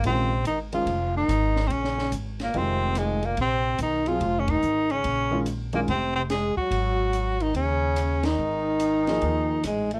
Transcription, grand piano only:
X:1
M:4/4
L:1/8
Q:"Swing" 1/4=144
K:Bbm
V:1 name="Grand piano"
[E,A,DF] z2 [E,A,DA] z4 | z4 [E,A,CF]3 z | z3 [G,CFA] z4 | z [E,A,DF] z [E,A,DF] z4 |
z8 | z3 [F,B,EA]3 z2 |]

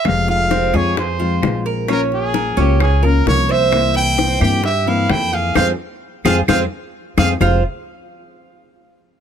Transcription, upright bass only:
X:1
M:4/4
L:1/8
Q:1/4=130
K:Fm
V:1 name="Upright bass" clef=bass
F,,,3 F,,3 B,,,2- | B,,,3 D,,3 C,,2- | C,,3 G,,3 F,,2 | F,, z2 F,, F,, z2 F,, |
F,,, z6 z |]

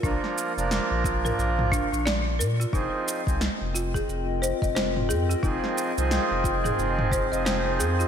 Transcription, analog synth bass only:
X:1
M:4/4
L:1/16
Q:"Swing 16ths" 1/4=89
K:Fm
V:1 name="Analog synth bass" clef=bass
B,,, z2 F,,, z B,,,3 B,,,3 B,,,3 B,, z | F,,, z2 C,, z F,,,3 F,,,3 F,,,3 F,, z | F,,, z2 C,, z F,,,3 F,,,3 F,,,3 F,, z |]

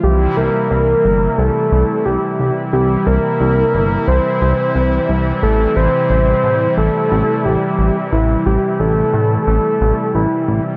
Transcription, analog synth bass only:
X:1
M:4/4
L:1/8
Q:1/4=89
K:Cmix
V:1 name="Analog synth bass" clef=bass
C,, C,, C,, G,,, C,, C,, C,, C,, | C,, C,, C,, G,,, C,, C,, C,, C,, | A,,, A,,, A,,, A,, A,,, A,,, A,,, A,,, | A,,, A,,, A,,, A,, A,,, A,,, A,,, A,,, |]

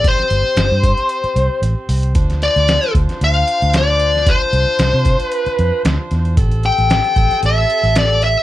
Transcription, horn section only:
X:1
M:4/4
L:1/8
Q:"Swing 16ths" 1/4=114
K:Am
V:1 name="Horn section"
[CGc]8 | [DFc]8- | [DFc]8 | [CGA]8 |]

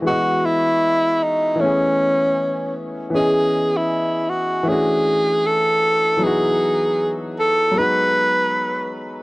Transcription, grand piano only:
X:1
M:4/4
L:1/8
Q:"Swing 16ths" 1/4=78
K:E
V:1 name="Grand piano"
[E,G,B,Fd]4 [E,A,B,CG]4 | [E,B,CGd]4 [E,A,C=DF]4 | [E,F,B,DF]4 [F,G,B,DF]4 |]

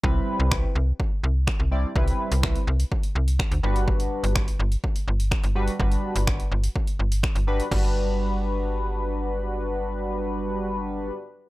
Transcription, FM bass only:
X:1
M:4/4
L:1/16
Q:1/4=125
K:G
V:1 name="FM bass" clef=bass
C,,2 z C,,3 C,,2 z2 C,,3 C,,3 | C,,2 z C,,3 C,,2 z2 C,,3 D,, G,,,2- | G,,,3 G,,,3 G,,,2 z2 G,,,3 G,,,3 | G,,,2 z G,,,3 G,,,2 z2 G,,,3 G,,,3 |
G,,,16- | G,,,16 |]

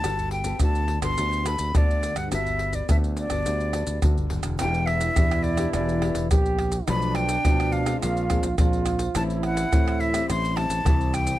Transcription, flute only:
X:1
M:4/4
L:1/16
Q:1/4=105
K:G
V:1 name="Flute"
a2 g2 a3 c'3 b2 d3 f | e3 d e2 d6 z4 | [K:Em] g2 e4 d2 d4 z4 | b2 g4 =f2 ^e4 z4 |
a2 f4 e2 c'2 a4 g2 |]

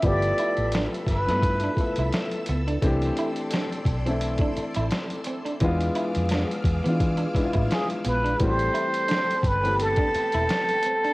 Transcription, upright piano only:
X:1
M:4/4
L:1/16
Q:"Swing 16ths" 1/4=86
K:Am
V:1 name="Upright piano"
[F,A,B,EG]4- [F,A,B,EG] z2 [F,A,B,EA]2 z [F,A,B,EA]4- [F,A,B,EA] z | [E,A,CDG]4- [E,A,CDG] z2 [E,A,CDE]6 z3 | [E,^G,B,DF]4- [E,G,B,DF] z2 [E,G,B,DF]2 z [E,G,B,DEF]4- [E,G,B,DEF] z | [E,G,A,C^FG]4- [E,G,A,CFG] z2 [E,A,B,CG]6 z3 |]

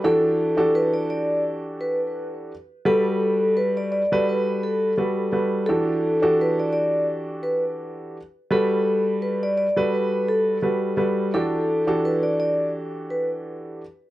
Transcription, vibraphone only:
X:1
M:4/4
L:1/16
Q:"Swing 16ths" 1/4=85
K:Em
V:1 name="Vibraphone"
A4 B d d2 z2 B z4 z | A4 B d d2 B2 A3 z3 | A4 B d d2 z2 B z4 z | A4 B d d2 B2 A3 z3 |
A4 B d d2 z2 B z4 z |]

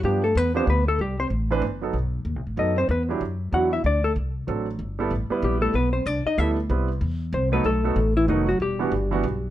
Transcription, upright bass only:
X:1
M:3/4
L:1/8
Q:"Swing" 1/4=189
K:G
V:1 name="Upright bass" clef=bass
G,,2 E,,2 D,,2 | C,,2 A,,,2 G,,,2 | B,,,2 (3^D,, B,,, A,,, F,,2 | E,,2 F,,2 E,,2 |
D,,2 C,,2 A,,,2 | G,,,2 A,,, z _B,,,2 | B,,,2 C,, z D,,2 | C,,2 E,,2 C,,2 |
B,,,2 A,,,2 =F,,,2 | E,,,2 G,,,2 B,,,2 |]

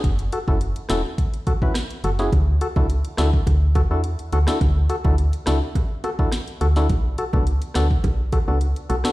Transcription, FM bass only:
X:1
M:4/4
L:1/16
Q:1/4=105
K:Dlyd
V:1 name="FM bass" clef=bass
F,,,2 z F,,,2 z E,,, z6 z F,,,2 | D,,2 z C,,2 z D,, z D,,3 E,,2 z D,, z | D,,2 z D,,2 z C,, z6 z D,,2 | B,,,2 z C,,2 z D,, z B,,,3 C,,2 z B,,, z |]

